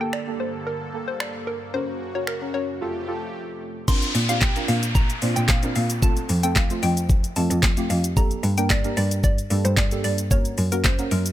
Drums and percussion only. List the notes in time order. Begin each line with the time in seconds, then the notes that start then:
0.13 finger snap
1.20 finger snap
2.27 finger snap
3.88 kick, crash, shaker
4.02 closed hi-hat, shaker
4.15 open hi-hat, shaker
4.29 closed hi-hat, shaker
4.41 kick, snare, clap, shaker
4.56 closed hi-hat, shaker
4.68 open hi-hat, shaker
4.83 closed hi-hat, shaker
4.95 kick, shaker
5.10 closed hi-hat, shaker
5.22 open hi-hat, shaker
5.36 closed hi-hat, shaker
5.48 kick, snare, clap, shaker
5.63 closed hi-hat, shaker
5.76 open hi-hat, shaker
5.90 closed hi-hat, shaker
6.02 kick, shaker
6.17 closed hi-hat, shaker
6.29 open hi-hat, shaker
6.43 closed hi-hat, shaker
6.56 kick, snare, clap, shaker
6.70 closed hi-hat, shaker
6.83 open hi-hat, shaker
6.97 closed hi-hat, shaker
7.09 kick, shaker
7.24 closed hi-hat, shaker
7.36 open hi-hat, shaker
7.51 closed hi-hat, shaker
7.63 kick, snare, clap, shaker
7.77 closed hi-hat, shaker
7.90 open hi-hat, shaker
8.04 closed hi-hat, shaker
8.17 kick, shaker
8.31 closed hi-hat, shaker
8.43 open hi-hat, shaker
8.58 closed hi-hat, shaker
8.70 kick, snare, clap, shaker
8.84 closed hi-hat, shaker
8.97 open hi-hat, shaker
9.11 closed hi-hat, shaker
9.24 kick, shaker
9.38 closed hi-hat, shaker
9.50 open hi-hat, shaker
9.65 closed hi-hat, shaker
9.77 kick, snare, clap, shaker
9.91 closed hi-hat, shaker
10.04 open hi-hat, shaker
10.18 closed hi-hat, shaker
10.31 kick, shaker
10.45 closed hi-hat, shaker
10.58 open hi-hat, shaker
10.72 closed hi-hat, shaker
10.84 kick, snare, clap, shaker
10.99 closed hi-hat, shaker
11.11 open hi-hat, shaker
11.26 closed hi-hat, shaker